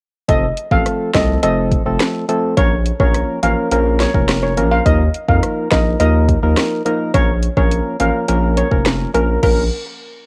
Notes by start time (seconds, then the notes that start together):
0.28 F1 F3 A3 C4 A4 D#5, kick, closed hi-hat
0.57 closed hi-hat
0.71 A1 F3 A3 C4 A4 F5, kick
0.86 cross-stick, closed hi-hat
1.14 C2 F3 A3 C4 A4 D#5, kick, cross-stick, snare, closed hi-hat
1.43 F1 F3 A3 C4 A4 D#5, closed hi-hat
1.72 kick, closed hi-hat
1.86 F1 F3 A3 C4 A4
2.00 cross-stick, snare, closed hi-hat
2.29 F3 A3 C4 A4, closed hi-hat
2.57 A#1 F3 A#3 C#4 A#4 C#5, kick, closed hi-hat
2.86 closed hi-hat
3.00 A#1 F3 A#3 C#4 A#4 C#5, kick
3.15 cross-stick, closed hi-hat
3.43 A1 F3 A#3 C#4 A#4 F5, closed hi-hat
3.71 A#1 F3 A#3 C#4 A#4, closed hi-hat
4.00 C#5, snare, closed hi-hat
4.14 F1 F3 A#3 C#4 A#4, kick
4.29 cross-stick, snare, closed hi-hat
4.43 C#5
4.57 A#1 F3 A#3 C#4 A#4, closed hi-hat
4.71 F5
4.86 D#2 F3 A#3 D#4 A#4 D#5, kick, closed hi-hat
5.14 closed hi-hat
5.28 F2 F3 A#3 D#4 A#4 F5, kick
5.43 cross-stick, closed hi-hat
5.71 A#1 F3 A#3 D#4 A#4 D#5, kick, cross-stick, snare, closed hi-hat
6.00 D#2 F3 A#3 D#4 A#4 D#5, closed hi-hat
6.29 kick, closed hi-hat
6.43 D#2 F3 A#3 D#4 A#4
6.57 cross-stick, snare, closed hi-hat
6.85 F3 A#3 D#4 A#4, closed hi-hat
7.14 A#1 F3 A#3 C#4 A#4 C#5, kick, closed hi-hat
7.43 closed hi-hat
7.57 A#1 F3 A#3 C#4 A#4 C#5, kick
7.71 closed hi-hat
8.00 A1 F3 A#3 C#4 A#4 F5, closed hi-hat
8.28 A#1 F3 A#3 C#4 A#4, closed hi-hat
8.57 C#5, closed hi-hat
8.71 F1 F3 A#3 C#4 A#4, kick
8.86 cross-stick, snare, closed hi-hat
9.14 A#1 F3 A#3 C#4 A#4, closed hi-hat
9.42 A#1 F3 A#3 C#4 A#4, kick, crash